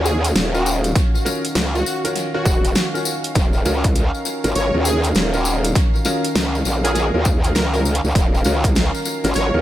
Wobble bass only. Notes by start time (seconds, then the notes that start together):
Already playing: D#2
0.35 D#1
1.56 C#2
2.45 D#1
3.35 D#1
3.65 C#2
4.45 G#1
4.55 G#1
4.74 D#2
5.15 D#1
6.35 C#2
6.65 A#1
7.14 D#2
7.55 C#2
8.04 C#2
8.15 D#1
8.45 C#2
9.24 G#1
9.35 G#1
9.54 D#2